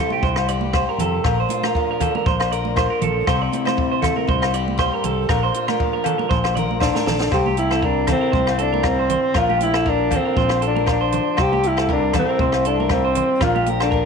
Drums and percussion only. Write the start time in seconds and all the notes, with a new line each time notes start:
0.10 high conga
0.23 kick
0.36 cross-stick, low agogo
0.48 closed hi-hat
0.61 high conga
0.73 kick, cross-stick, low agogo
0.99 closed hi-hat, low conga
1.24 kick, cross-stick, low agogo
1.49 closed hi-hat, high conga
1.63 cross-stick, high conga, low agogo
1.75 kick
2.00 kick, closed hi-hat, low conga, low agogo
2.15 high conga
2.26 kick
2.40 cross-stick, low agogo
2.52 closed hi-hat
2.65 high conga
2.76 kick, cross-stick, low agogo
3.02 closed hi-hat, low conga
3.27 kick, cross-stick, low agogo
3.53 closed hi-hat, high conga
3.65 cross-stick, high conga, low agogo
3.78 kick
4.02 kick, cross-stick, closed hi-hat, low conga, low agogo
4.17 high conga
4.29 kick
4.42 cross-stick, low agogo
4.54 closed hi-hat
4.68 high conga
4.79 kick, cross-stick, low agogo
5.04 closed hi-hat, low conga
5.29 kick, cross-stick, low agogo
5.54 closed hi-hat
5.68 cross-stick, high conga, low agogo
5.80 kick
6.04 closed hi-hat, low conga, low agogo
6.19 high conga
6.31 kick
6.44 cross-stick, low agogo
6.57 closed hi-hat, low conga
6.71 high conga
6.80 kick, snare, low agogo
6.95 snare, high conga
7.07 snare, low conga
7.20 snare
7.31 kick, cross-stick, low agogo
7.46 high conga
7.57 closed hi-hat
7.71 cross-stick, low agogo
7.82 kick
8.07 kick, cross-stick, closed hi-hat, low conga, low agogo
8.33 kick, high conga
8.47 cross-stick, low agogo
8.58 closed hi-hat
8.74 high conga
8.83 kick, cross-stick, low agogo
9.09 closed hi-hat, low conga
9.34 kick, cross-stick, low agogo
9.50 high conga
9.60 closed hi-hat
9.74 cross-stick, low agogo
9.86 kick
10.11 kick, closed hi-hat, low conga, low agogo
10.37 kick, high conga
10.49 cross-stick, low agogo
10.62 closed hi-hat
10.76 high conga
10.86 kick, cross-stick, low agogo
11.12 closed hi-hat, low conga
11.37 kick, cross-stick, low agogo
11.53 high conga
11.63 closed hi-hat
11.77 cross-stick, low agogo
11.89 kick
12.13 kick, cross-stick, closed hi-hat, low conga, low agogo
12.39 kick, high conga
12.52 cross-stick, low agogo
12.65 closed hi-hat
12.80 high conga
12.89 kick, cross-stick, low agogo
13.15 closed hi-hat, low conga
13.41 kick, cross-stick, low conga, low agogo
13.56 high conga
13.66 closed hi-hat, high conga
13.80 cross-stick, low agogo
13.92 kick